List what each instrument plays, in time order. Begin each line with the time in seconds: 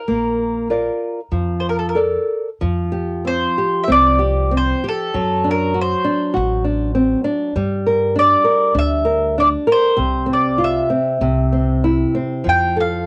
Already playing: mandolin A#4
0.08 upright bass A#1, nylon-string guitar A#3
0.70 nylon-string guitar F4 A#4 D5
1.32 upright bass F2, nylon-string guitar F3
1.60 mandolin C5
1.69 mandolin A#4
1.79 mandolin A4
1.89 mandolin A#4
1.95 nylon-string guitar A4 A#4 D5
2.61 upright bass F2, nylon-string guitar F3
2.92 nylon-string guitar G4
3.25 nylon-string guitar C4, mandolin C5
3.58 nylon-string guitar G4
3.83 mandolin E5
3.88 upright bass C2, nylon-string guitar C4, mandolin D5
4.19 nylon-string guitar G4
4.51 nylon-string guitar C4
4.57 mandolin C5
4.84 nylon-string guitar G4
4.88 mandolin A4
5.14 upright bass F#2, nylon-string guitar F#3
5.44 nylon-string guitar D4
5.51 mandolin A#4
5.74 nylon-string guitar F#4
5.81 mandolin C5
6.04 nylon-string guitar D4
6.34 upright bass A1, nylon-string guitar F#4
6.64 nylon-string guitar D4
6.95 nylon-string guitar C4
7.24 nylon-string guitar D4
7.56 upright bass G2, nylon-string guitar G3
7.87 nylon-string guitar A#4
8.16 nylon-string guitar D4, mandolin D5
8.44 nylon-string guitar A#4
8.74 upright bass D2, nylon-string guitar D4
8.79 mandolin E5
9.05 nylon-string guitar A#4
9.38 nylon-string guitar D4, mandolin D5
9.67 nylon-string guitar A#4
9.72 mandolin C5
9.97 upright bass C2, nylon-string guitar C3
10.26 nylon-string guitar C4
10.33 mandolin D5
10.58 nylon-string guitar F4
10.64 mandolin E5
10.90 nylon-string guitar C4
11.21 upright bass C2, nylon-string guitar C3
11.52 nylon-string guitar C4
11.84 nylon-string guitar E4
12.15 nylon-string guitar C4
12.44 upright bass F2, nylon-string guitar F3
12.49 mandolin G5
12.77 nylon-string guitar A4
12.81 mandolin F5